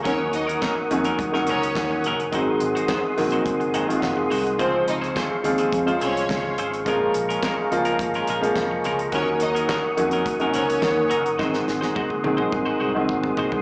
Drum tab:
HH |x-xx--xxx-xx--xx|x-xx--oxxxxx--ox|x-xx--xxxxxx--xx|x-xx--xxxxxx--xx|
CP |----x-------x---|----x-------x---|----x-------x---|----x-------x---|
SD |----o----o--o---|----o-------o---|----o-------o---|----o-------o---|
T1 |----------------|----------------|----------------|----------------|
T2 |----------------|----------------|----------------|----------------|
FT |----------------|----------------|----------------|----------------|
BD |o---o---o---o---|o---o---o---o---|o---o---o---o---|o---o---o---o---|

HH |x-xx--xxxxxx--xx|----------------|
CP |----x-------x---|----------------|
SD |----o-------o---|oooo------------|
T1 |----------------|----ooo---------|
T2 |----------------|-------oo-------|
FT |----------------|-------------ooo|
BD |o---o---o---o---|o---o---o---o---|